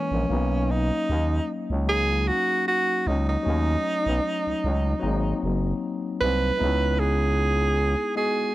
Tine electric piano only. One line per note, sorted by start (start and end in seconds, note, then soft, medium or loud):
0.00 0.33 E3 medium
0.00 0.33 G#3 medium
0.00 0.29 A#3 medium
0.00 0.31 C#4 medium
0.28 1.44 F#3 medium
0.28 1.45 A#3 medium
0.28 1.45 C#4 medium
0.28 1.46 D#4 medium
1.86 3.02 F#3 medium
1.86 3.02 A#3 medium
1.86 3.03 C#4 medium
1.86 3.03 D#4 medium
3.43 4.59 F#3 medium
3.43 4.59 A3 medium
3.43 4.60 C#4 medium
3.43 4.61 D#4 medium
5.00 6.16 F#3 medium
5.00 6.17 A#3 medium
5.00 6.17 C4 medium
5.00 6.18 D#4 medium
6.57 7.73 G#3 medium
6.57 7.74 B3 medium
6.57 7.74 D#4 medium
6.57 7.75 E4 medium
8.15 8.55 G#3 medium
8.15 8.55 B3 medium
8.15 8.55 F#4 medium
8.15 8.55 D#5 medium